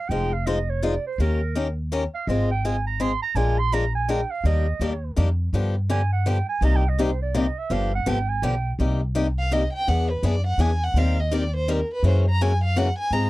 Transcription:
Already playing: clarinet F5
0.09 upright bass F1, steel-string acoustic guitar F3 G#3 D#4 F4 C5, clarinet G5
0.33 clarinet F5
0.46 steel-string acoustic guitar F3 G#3 D#4 F4 C5, clarinet D#5
0.70 clarinet C#5
0.82 steel-string acoustic guitar F3 G#3 D#4 F4 C5, clarinet D5
1.06 clarinet C5
1.18 upright bass D#2, steel-string acoustic guitar D#3 A#3 C#4 G4 A#4, clarinet A#4
1.55 steel-string acoustic guitar D#3 A#3 C#4 G4 A#4
1.92 steel-string acoustic guitar D#3 A#3 C#4 G4 A#4
2.14 clarinet F5
2.27 upright bass G#1, steel-string acoustic guitar G#3 C4 F4 G#4, clarinet D#5
2.51 clarinet G5
2.65 steel-string acoustic guitar G#3 C4 F4 G#4, clarinet G#5
2.87 clarinet A#5
3.00 steel-string acoustic guitar G#3 C4 F4 G#4, clarinet C6
3.22 clarinet A#5
3.35 upright bass A#1, steel-string acoustic guitar F3 G#3 D4 F4 A#4, clarinet G#5
3.58 clarinet C6
3.72 steel-string acoustic guitar F3 G#3 D4 F4 A#4, clarinet A#5
3.95 clarinet G#5
4.08 steel-string acoustic guitar F3 G#3 D4 F4 A#4, clarinet G5
4.30 clarinet F5
4.44 upright bass D#2, steel-string acoustic guitar D#3 G3 A#3 D4 G4, clarinet D#5
4.80 upright bass D#2, steel-string acoustic guitar D#3 G3 A#3 D4 G4
5.16 upright bass F2, steel-string acoustic guitar D#3 G3 A#3 D4 G4
5.53 upright bass G2, steel-string acoustic guitar D3 F3 B3 D4 G4
5.90 steel-string acoustic guitar D3 F3 B3 D4 G4, clarinet G#5
6.12 clarinet F#5
6.26 steel-string acoustic guitar D3 F3 B3 D4 G4, clarinet G5
6.49 clarinet G#5
6.61 upright bass C2, steel-string acoustic guitar C3 G3 A#3 D#4 G4, clarinet A#5
6.76 clarinet G5
6.89 clarinet D#5
6.99 steel-string acoustic guitar C3 G3 A#3 D#4 G4, clarinet C5
7.22 clarinet D5
7.34 steel-string acoustic guitar C3 G3 A#3 D#4 G4, clarinet D#5
7.58 clarinet E5
7.70 upright bass G1, steel-string acoustic guitar D3 F3 B3 D4 G4, clarinet F5
7.95 clarinet F#5
8.06 upright bass G#1, steel-string acoustic guitar D3 F3 B3 D4 G4, clarinet G5
8.28 clarinet G#5
8.42 upright bass B1, steel-string acoustic guitar D3 F3 B3 D4 G4, clarinet G5
8.79 upright bass C2, steel-string acoustic guitar C3 G3 A#3 D#4 G4
9.15 steel-string acoustic guitar C3 G3 A#3 D#4 G4
9.39 violin F5
9.51 steel-string acoustic guitar C3 G3 A#3 D#4 G4, violin D#5
9.73 violin G5
9.87 upright bass E2, steel-string acoustic guitar E3 B3 D4 G#4, violin F#5
10.10 violin B4
10.23 upright bass F#2, steel-string acoustic guitar E3 B3 D4 G#4, violin D5
10.47 violin F#5
10.58 upright bass E2, steel-string acoustic guitar E3 B3 D4 G#4, violin G#5
10.83 violin F#5
10.94 upright bass D#2, steel-string acoustic guitar D#3 G3 C4 G4 A#4
10.98 violin F5
11.20 violin D#5
11.31 steel-string acoustic guitar D#3 G3 C4 G4 A#4, violin D5
11.56 violin C5
11.68 steel-string acoustic guitar D#3 G3 C4 G4 A#4, violin A#4
11.93 violin B4
12.03 upright bass F#2, steel-string acoustic guitar C#3 E3 A#3 C#4 F#4
12.07 violin C5
12.30 violin A#5
12.41 steel-string acoustic guitar C#3 E3 A#3 C#4 F#4, violin G#5
12.64 violin F5
12.76 steel-string acoustic guitar C#3 E3 A#3 C#4 F#4, violin F#5
12.99 violin G#5
13.11 upright bass G#2, steel-string acoustic guitar G#3 C4 F4 G#4, violin A#5

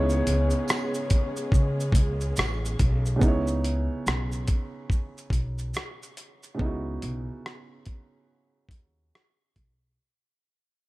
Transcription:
Already playing: upright bass C#2, felt piano C#3 B3 D#4 E4 C#5, string section C#3 G#3 B3 C#4 G#4, upright piano C#5
0.09 shaker
0.27 upright bass C#2, closed hi-hat, shaker
0.50 shaker
0.68 cross-stick, tambourine, shaker
0.94 shaker
1.10 kick, closed hi-hat, shaker
1.36 shaker
1.52 upright bass C#3, kick, shaker
1.80 shaker
1.92 upright bass C#2, kick, closed hi-hat, shaker
2.21 shaker
2.36 upright bass A1, cross-stick, tambourine, shaker
2.65 shaker
2.79 upright bass B1, kick, closed hi-hat, shaker
3.05 shaker
3.16 felt piano C#3 B3
3.21 upright bass C#2, felt piano D#4 E4, kick, shaker
3.28 felt piano C#5
3.47 shaker
3.64 closed hi-hat, shaker
4.07 upright bass B1, cross-stick, shaker
4.32 shaker
4.48 kick, closed hi-hat, shaker
4.90 kick, shaker
5.18 shaker
5.30 upright bass B1, kick, closed hi-hat, shaker
5.58 shaker
5.74 cross-stick, shaker
6.03 shaker
6.17 closed hi-hat, shaker
6.43 shaker
6.54 felt piano C#3 B3
6.59 upright bass C#2, felt piano D#4, kick
6.63 felt piano E4 F#4
7.02 upright bass B1, closed hi-hat
7.46 cross-stick
7.86 kick, closed hi-hat
8.69 upright bass D#2, kick, closed hi-hat
9.15 cross-stick
9.56 upright bass B1, kick, closed hi-hat

